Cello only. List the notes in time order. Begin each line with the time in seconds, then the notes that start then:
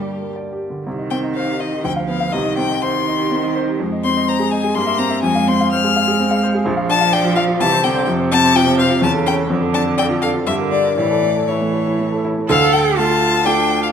Already playing: G3
0.87 D#3
1.85 F3
2.34 D#3
2.83 D#3
3.81 G#3
4.76 A#3
5.24 G#3
5.73 G#3
6.66 F3
7.60 E3
7.84 D3
8.08 C3
9.03 C#3
9.50 D3
10.46 D3
10.98 E3
11.48 E3
12.49 A4
12.97 F4
13.45 D4